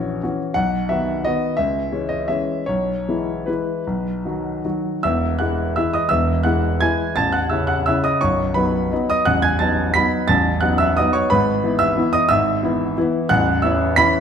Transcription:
0.00 0.25 A#1 medium
0.00 0.21 E3 soft
0.00 0.21 C#4 soft
0.00 0.21 F#4 soft
0.00 0.39 C#5 medium
0.23 0.53 E3 soft
0.23 0.53 C#4 soft
0.23 0.54 F#4 soft
0.54 0.89 B1 medium
0.54 0.89 F#5 medium
0.89 1.22 D#3 soft
0.89 1.22 B3 soft
0.89 1.22 F#4 soft
0.89 1.24 E5 medium
1.25 1.55 D#3 soft
1.25 1.56 B3 soft
1.25 1.56 F#4 soft
1.25 1.58 D#5 medium
1.57 1.91 C#2 medium
1.57 2.08 E5 medium
1.92 2.25 E3 soft
1.92 2.25 G#3 soft
1.92 2.25 C#4 soft
2.09 2.28 D#5 medium
2.28 2.63 E3 soft
2.28 2.63 G#3 soft
2.28 2.63 C#4 soft
2.28 2.66 E5 medium
2.66 3.07 B1 medium
2.66 3.48 C#5 medium
3.09 3.45 E3 soft
3.09 3.45 G#3 soft
3.09 3.45 E4 soft
3.46 3.83 E3 soft
3.46 3.84 G#3 soft
3.46 3.84 E4 soft
3.46 4.63 B4 medium
3.87 4.24 B1 medium
4.25 4.60 D#3 soft
4.25 4.61 F#3 soft
4.25 4.61 F#4 soft
4.64 5.00 D#3 soft
4.64 5.00 F#3 soft
4.64 5.00 F#4 soft
5.03 5.40 E1 soft
5.03 5.40 E2 medium
5.03 5.38 E5 medium
5.03 5.40 E6 medium
5.39 5.72 E3 soft
5.39 5.73 G#3 soft
5.39 5.73 E4 soft
5.39 5.73 F#5 medium
5.39 5.75 F#6 medium
5.76 6.08 E3 soft
5.76 6.08 G#3 soft
5.76 6.08 E4 soft
5.76 5.93 E5 medium
5.76 5.94 E6 medium
5.93 6.10 D#5 medium
5.93 6.11 D#6 medium
6.09 6.44 E1 medium
6.09 6.44 E2 medium
6.09 6.43 E5 medium
6.09 6.44 E6 loud
6.43 6.79 E3 soft
6.43 6.79 G#3 soft
6.43 6.79 E4 soft
6.43 6.79 F#5 medium
6.43 6.81 F#6 medium
6.81 7.14 E3 soft
6.81 7.14 G#3 soft
6.81 7.14 E4 soft
6.81 7.15 G#5 medium
6.81 7.16 G#6 loud
7.16 7.51 A0 soft
7.16 7.51 A1 medium
7.16 7.33 A5 medium
7.16 7.34 A6 loud
7.32 7.50 F#5 medium
7.32 7.51 F#6 medium
7.50 7.83 C#3 soft
7.50 7.84 C#4 soft
7.50 7.84 E4 soft
7.50 7.68 E5 medium
7.50 7.68 E6 medium
7.67 7.85 F#5 medium
7.67 7.86 F#6 medium
7.86 8.18 C#3 soft
7.86 8.19 C#4 soft
7.86 8.19 E4 soft
7.86 8.04 E5 medium
7.86 8.04 E6 medium
8.04 8.21 D#5 medium
8.04 8.21 D#6 medium
8.21 8.55 B0 medium
8.21 8.55 B1 medium
8.21 8.53 C#5 medium
8.21 8.55 C#6 medium
8.54 8.88 F#3 soft
8.54 8.88 B3 soft
8.54 8.88 D#4 soft
8.54 9.05 B4 medium
8.54 9.08 B5 medium
8.91 9.24 F#3 soft
8.91 9.24 B3 soft
8.91 9.24 D#4 medium
9.10 9.26 D#5 medium
9.10 9.27 D#6 loud
9.25 9.61 A0 medium
9.25 9.60 A1 medium
9.25 9.43 F#5 medium
9.25 9.43 F#6 loud
9.42 9.60 G#5 medium
9.42 9.61 G#6 loud
9.59 9.92 F#3 soft
9.59 9.93 B3 soft
9.59 9.93 D#4 soft
9.59 9.93 A5 medium
9.59 9.95 A6 medium
9.94 10.27 F#3 soft
9.94 10.27 B3 medium
9.94 10.27 D#4 medium
9.94 10.28 B5 medium
9.94 10.29 B6 loud
10.28 10.62 A0 medium
10.28 10.62 A1 medium
10.28 10.61 A5 medium
10.28 10.62 A6 loud
10.61 10.94 F#3 medium
10.61 10.94 B3 soft
10.61 10.95 D#4 soft
10.61 10.79 F#5 medium
10.61 10.79 F#6 medium
10.78 10.97 E5 medium
10.78 10.97 E6 loud
10.97 11.29 F#3 soft
10.97 11.29 B3 medium
10.97 11.29 D#4 medium
10.97 11.14 D#5 medium
10.97 11.14 D#6 medium
11.13 11.30 C#5 medium
11.13 11.31 C#6 medium
11.30 11.63 G#1 medium
11.30 11.64 G#2 medium
11.30 11.77 B4 medium
11.30 11.80 B5 medium
11.64 11.94 E3 soft
11.64 11.94 B3 soft
11.64 11.95 E4 soft
11.79 12.12 E5 medium
11.79 12.14 E6 loud
11.98 12.28 E3 soft
11.98 12.28 B3 medium
11.98 12.28 E4 medium
12.13 12.30 D#5 medium
12.13 12.30 D#6 loud
12.29 12.62 G#1 medium
12.29 12.62 G#2 medium
12.29 12.93 E5 medium
12.29 12.96 E6 loud
12.63 12.93 E3 soft
12.63 12.93 B3 soft
12.63 12.94 E4 medium
12.98 13.27 E3 medium
12.98 13.28 B3 medium
12.98 13.27 E4 medium
13.29 13.62 A0 medium
13.29 13.63 A1 medium
13.29 13.61 F#5 medium
13.29 13.63 F#6 loud
13.62 13.94 E3 medium
13.62 13.94 C#4 medium
13.62 13.94 E4 medium
13.62 13.95 E5 medium
13.62 13.96 E6 medium
13.96 14.20 E3 medium
13.96 14.20 C#4 medium
13.96 14.20 E4 medium
13.96 14.20 B5 loud
13.96 14.20 B6 loud

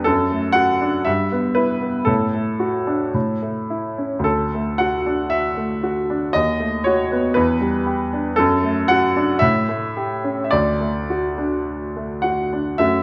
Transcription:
0.04 1.03 F#2 medium
0.04 0.55 A4 medium
0.31 0.71 A3 soft
0.53 0.96 F#4 soft
0.53 1.05 F#5 medium
0.81 1.07 D4 soft
1.05 2.05 G2 soft
1.05 1.56 E5 medium
1.32 1.72 B3 soft
1.55 1.97 E4 soft
1.55 2.07 B4 medium
1.82 2.08 B3 soft
2.05 3.11 A2 soft
2.05 3.68 A4 medium
2.34 2.77 A3 soft
2.60 3.03 F#4 soft
2.87 3.14 D4 soft
3.14 4.21 A2 soft
3.42 3.86 A3 soft
3.70 4.14 E4 soft
3.98 4.25 C#4 soft
4.19 6.27 D2 soft
4.24 4.78 A4 medium
4.54 4.96 A3 soft
4.78 5.22 F#4 soft
4.78 5.31 F#5 medium
5.06 5.88 D4 soft
5.30 6.33 E5 medium
5.57 5.98 A3 soft
5.83 6.24 F#4 soft
6.10 6.35 D4 soft
6.33 7.33 D#2 soft
6.33 6.84 D#5 medium
6.60 7.00 A3 soft
6.84 7.26 F#4 soft
6.84 7.35 C#5 medium
7.12 7.36 B3 soft
7.34 8.35 E2 medium
7.34 8.37 B4 medium
7.61 8.01 G3 soft
7.86 8.27 G4 soft
8.13 8.38 D4 soft
8.36 9.40 F#2 medium
8.36 8.89 A4 medium
8.64 9.05 A3 soft
8.88 9.32 F#4 soft
8.88 9.41 F#5 medium
9.16 9.42 D4 soft
9.39 10.48 A2 medium
9.39 10.42 E5 medium
9.69 10.12 A3 soft
9.97 10.41 G4 soft
10.24 10.52 C#4 soft
10.44 10.52 E5 soft
10.51 12.76 D2 soft
10.51 12.23 D5 medium
10.80 11.26 A3 soft
11.10 11.55 F#4 soft
11.38 12.30 D4 soft
11.96 12.42 A3 soft
12.22 12.69 F#4 soft
12.22 12.79 F#5 medium
12.53 12.80 D4 soft
12.78 13.03 F#2 soft
12.78 13.03 A3 soft
12.78 13.03 F#4 soft
12.78 13.03 E5 medium

